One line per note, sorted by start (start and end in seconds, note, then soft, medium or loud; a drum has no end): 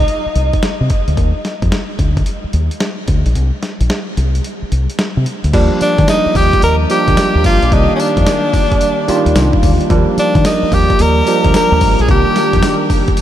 0.00 0.87 D#4 medium
0.08 closed hi-hat medium
0.26 muted fingered electric bass stroke soft
0.35 0.50 C2 medium
0.35 closed hi-hat medium
0.53 kick medium
0.53 closed hi-hat soft
0.63 snare loud
0.63 closed hi-hat medium
0.81 0.88 C3 medium
0.90 kick medium
0.90 closed hi-hat medium
1.08 1.15 D2 medium
1.08 closed hi-hat soft
1.17 1.32 D#2 medium
1.17 kick loud
1.17 closed hi-hat medium
1.45 snare medium
1.45 closed hi-hat medium
1.62 1.70 F2 medium
1.62 kick loud
1.62 closed hi-hat soft
1.72 snare loud
1.72 closed hi-hat medium
1.99 2.21 D2 medium
1.99 kick medium
1.99 closed hi-hat medium
2.17 kick medium
2.17 closed hi-hat soft
2.26 closed hi-hat medium
2.44 muted fingered electric bass stroke soft
2.53 2.68 D#2 medium
2.53 closed hi-hat medium
2.71 closed hi-hat medium
2.80 snare loud
2.80 closed hi-hat medium
3.08 3.22 D2 medium
3.08 kick loud
3.08 closed hi-hat medium
3.26 3.34 A#1 medium
3.26 closed hi-hat soft
3.35 3.50 C2 loud
3.35 closed hi-hat medium
3.63 snare medium
3.63 closed hi-hat medium
3.81 3.88 A#1 medium
3.81 closed hi-hat medium
3.90 snare loud
3.90 closed hi-hat medium
4.17 4.39 C2 medium
4.17 closed hi-hat medium
4.35 closed hi-hat soft
4.44 closed hi-hat medium
4.62 muted fingered electric bass stroke soft
4.72 4.86 C2 medium
4.72 closed hi-hat medium
4.90 closed hi-hat medium
4.99 snare loud
4.99 closed hi-hat medium
5.17 5.25 C3 medium
5.26 closed hi-hat medium
5.44 5.52 D2 medium
5.44 closed hi-hat soft
5.53 5.68 D#2 loud
5.53 6.47 F3 medium
5.53 6.47 G3 medium
5.53 6.47 A#3 medium
5.53 6.47 D4 loud
5.53 kick loud
5.53 closed hi-hat medium
5.53 crash loud
5.81 6.07 D4 medium
5.81 muted fingered electric bass stroke medium
5.81 closed hi-hat medium
5.81 tambourine medium
5.98 6.06 D#3 loud
5.98 kick loud
5.98 closed hi-hat medium
6.08 6.38 D#4 loud
6.08 snare loud
6.08 closed hi-hat medium
6.08 tambourine loud
6.26 muted fingered electric bass stroke medium
6.35 6.50 D#2 medium
6.35 6.63 G4 loud
6.35 kick loud
6.35 open hi-hat medium
6.35 tambourine medium
6.53 kick medium
6.53 closed hi-hat medium
6.62 6.85 D#2 loud
6.62 6.76 A#4 loud
6.62 closed hi-hat medium
6.62 tambourine medium
6.90 7.62 F3 medium
6.90 7.62 G3 medium
6.90 7.62 A#3 medium
6.90 7.62 D4 medium
6.90 7.41 G4 loud
6.90 closed hi-hat medium
6.90 tambourine medium
7.08 7.15 D2 medium
7.08 kick loud
7.08 closed hi-hat medium
7.17 snare loud
7.17 closed hi-hat medium
7.17 tambourine medium
7.35 7.43 D#2 medium
7.44 7.59 G#1 medium
7.44 7.75 F4 loud
7.44 kick loud
7.44 open hi-hat medium
7.44 tambourine medium
7.62 7.70 A#1 medium
7.62 closed hi-hat soft
7.72 7.86 C2 loud
7.72 8.65 D#3 medium
7.72 8.65 G3 medium
7.72 8.65 A#3 medium
7.72 8.66 D4 medium
7.72 7.95 D#4 medium
7.72 kick loud
7.72 closed hi-hat medium
7.96 8.02 C#4 medium
8.00 9.63 D4 loud
8.00 closed hi-hat medium
8.00 tambourine medium
8.17 8.25 F2 medium
8.17 kick loud
8.17 closed hi-hat medium
8.27 snare loud
8.27 closed hi-hat medium
8.27 tambourine loud
8.54 kick loud
8.54 open hi-hat medium
8.54 tambourine medium
8.72 kick medium
8.72 closed hi-hat medium
8.81 closed hi-hat medium
8.81 tambourine medium
9.08 9.80 D#3 loud
9.08 9.80 G3 medium
9.08 9.80 A#3 medium
9.08 9.81 F4 loud
9.08 muted fingered electric bass stroke soft
9.08 closed hi-hat medium
9.08 tambourine medium
9.26 9.34 D#2 medium
9.26 closed hi-hat medium
9.35 9.50 C2 medium
9.35 snare loud
9.35 closed hi-hat medium
9.35 tambourine loud
9.53 kick medium
9.63 9.77 D2 loud
9.63 kick loud
9.63 open hi-hat medium
9.63 tambourine medium
9.81 closed hi-hat soft
9.90 10.04 D#2 loud
9.90 10.83 F3 medium
9.90 9.99 F#3 medium
9.90 10.84 A#3 medium
9.90 10.84 D4 loud
9.90 kick loud
9.90 closed hi-hat medium
9.97 10.87 G3 medium
10.17 10.44 D4 medium
10.17 muted fingered electric bass stroke medium
10.17 closed hi-hat medium
10.17 tambourine medium
10.35 10.43 D#3 loud
10.35 kick loud
10.35 closed hi-hat medium
10.45 10.75 D#4 loud
10.45 snare loud
10.45 closed hi-hat medium
10.45 tambourine loud
10.63 muted fingered electric bass stroke medium
10.72 10.86 D#2 loud
10.72 11.03 G4 loud
10.72 kick loud
10.72 open hi-hat medium
10.72 tambourine medium
10.90 kick medium
10.90 closed hi-hat medium
10.99 11.21 D#2 loud
10.99 11.55 A#4 loud
10.99 closed hi-hat medium
10.99 tambourine medium
11.27 11.99 F3 medium
11.27 11.99 G3 medium
11.27 11.99 A#3 medium
11.27 11.99 D4 medium
11.27 closed hi-hat medium
11.27 tambourine medium
11.44 11.52 D2 medium
11.44 kick loud
11.44 closed hi-hat medium
11.54 12.03 A#4 loud
11.54 snare loud
11.54 closed hi-hat medium
11.54 tambourine loud
11.72 11.79 D#2 loud
11.81 11.96 G#1 medium
11.81 kick loud
11.81 open hi-hat medium
11.81 tambourine medium
11.99 12.07 A#1 medium
11.99 12.09 G#4 loud
11.99 closed hi-hat soft
12.09 12.23 C2 loud
12.09 13.02 D#3 medium
12.09 13.02 G3 medium
12.09 13.02 A#3 medium
12.09 13.02 D4 medium
12.09 12.87 G4 loud
12.09 kick loud
12.09 closed hi-hat medium
12.36 snare medium
12.36 closed hi-hat medium
12.36 tambourine medium
12.53 12.61 F2 loud
12.53 kick loud
12.53 closed hi-hat medium
12.63 snare loud
12.63 closed hi-hat medium
12.63 tambourine loud
12.90 kick medium
12.90 open hi-hat medium
12.90 tambourine medium
13.08 kick medium
13.08 closed hi-hat medium
13.17 closed hi-hat medium
13.17 tambourine medium